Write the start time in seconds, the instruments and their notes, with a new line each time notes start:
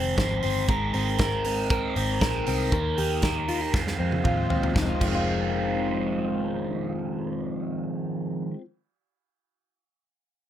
Already playing: picked electric bass F1, clean electric guitar F2 C5, overdriven electric guitar D#3 G#3 C4 C5
0.17 picked electric bass G#1, overdriven electric guitar F2 D#3 F3 G#3 C4 C5, kick, snare, closed hi-hat
0.43 picked electric bass G1, overdriven electric guitar D#3 G#3 C4 C5, open hi-hat
0.68 picked electric bass G#1, overdriven electric guitar G#3 C4 D#4 A#4, kick, closed hi-hat
0.93 picked electric bass G#1, overdriven electric guitar C4 D#4 A#4, open hi-hat
1.19 overdriven electric guitar G#3 C4 D#4 A#4, kick, snare, closed hi-hat
1.44 overdriven electric guitar C4 D#4 A#4, open hi-hat
1.70 overdriven electric guitar G#3 C4 D#4 A#4, kick, closed hi-hat
1.95 picked electric bass G#1, overdriven electric guitar C4 D#4 A#4, open hi-hat
2.20 picked electric bass A#1, overdriven electric guitar G#3 C4 D#4 A#4, kick, snare, closed hi-hat
2.46 picked electric bass C2, overdriven electric guitar C4 D#4 A#4, open hi-hat
2.72 picked electric bass D#2, overdriven electric guitar D#3 D#4 G4 A#4, kick, closed hi-hat
2.97 picked electric bass D#2, overdriven electric guitar D#4 G4 A#4, open hi-hat
3.22 overdriven electric guitar D#3 D#4 G4 A#4, kick, snare, closed hi-hat
3.48 overdriven electric guitar D#4 G4 A#4, clean electric guitar F4, open hi-hat
3.61 clean electric guitar G4
3.73 clean electric guitar F2, picked electric bass F2, overdriven electric guitar D#3 G#3 C4 F4, kick, snare
3.87 snare
3.99 picked electric bass F2, overdriven electric guitar D#3 G#3 C4 F4
4.12 high tom
4.24 picked electric bass D#2, overdriven electric guitar F2 D#3 F3 G#3 C4 F4, kick, mid tom
4.49 picked electric bass D#2, overdriven electric guitar D#3 G#3 C4 F4, floor tom
4.63 floor tom
4.72 overdriven electric guitar F2 F3, kick
4.76 picked electric bass F1, overdriven electric guitar D#3, snare
4.81 overdriven electric guitar G#3 C4
4.85 overdriven electric guitar F4
4.97 overdriven electric guitar F2 F3
5.01 picked electric bass F1, overdriven electric guitar D#3, kick, crash
5.06 overdriven electric guitar G#3 C4
5.10 overdriven electric guitar F4
5.15 clean electric guitar F4